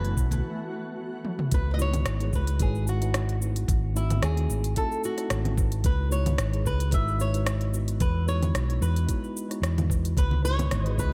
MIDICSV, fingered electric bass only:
0, 0, Header, 1, 2, 480
1, 0, Start_track
1, 0, Key_signature, 4, "minor"
1, 0, Tempo, 540541
1, 1350, Time_signature, 4, 2, 24, 8
1, 9883, End_track
2, 0, Start_track
2, 0, Title_t, "Fingered electric bass"
2, 0, Program_c, 0, 33
2, 0, Note_on_c, 0, 30, 89
2, 115, Note_off_c, 0, 30, 0
2, 149, Note_on_c, 0, 35, 101
2, 356, Note_off_c, 0, 35, 0
2, 1348, Note_on_c, 0, 37, 96
2, 1802, Note_off_c, 0, 37, 0
2, 1828, Note_on_c, 0, 32, 96
2, 2036, Note_off_c, 0, 32, 0
2, 2069, Note_on_c, 0, 37, 100
2, 2308, Note_on_c, 0, 32, 95
2, 2321, Note_off_c, 0, 37, 0
2, 3242, Note_off_c, 0, 32, 0
2, 3269, Note_on_c, 0, 32, 102
2, 3723, Note_off_c, 0, 32, 0
2, 3750, Note_on_c, 0, 39, 97
2, 3957, Note_off_c, 0, 39, 0
2, 3991, Note_on_c, 0, 32, 107
2, 4197, Note_off_c, 0, 32, 0
2, 4710, Note_on_c, 0, 32, 104
2, 5164, Note_off_c, 0, 32, 0
2, 5188, Note_on_c, 0, 37, 100
2, 5643, Note_off_c, 0, 37, 0
2, 5672, Note_on_c, 0, 32, 105
2, 5878, Note_off_c, 0, 32, 0
2, 5906, Note_on_c, 0, 37, 105
2, 6148, Note_on_c, 0, 32, 88
2, 6162, Note_off_c, 0, 37, 0
2, 7083, Note_off_c, 0, 32, 0
2, 7108, Note_on_c, 0, 40, 102
2, 7563, Note_off_c, 0, 40, 0
2, 7587, Note_on_c, 0, 35, 95
2, 7795, Note_off_c, 0, 35, 0
2, 7826, Note_on_c, 0, 40, 102
2, 8035, Note_off_c, 0, 40, 0
2, 8541, Note_on_c, 0, 40, 98
2, 8999, Note_off_c, 0, 40, 0
2, 9027, Note_on_c, 0, 37, 102
2, 9482, Note_off_c, 0, 37, 0
2, 9512, Note_on_c, 0, 32, 97
2, 9718, Note_off_c, 0, 32, 0
2, 9748, Note_on_c, 0, 37, 112
2, 9883, Note_off_c, 0, 37, 0
2, 9883, End_track
0, 0, End_of_file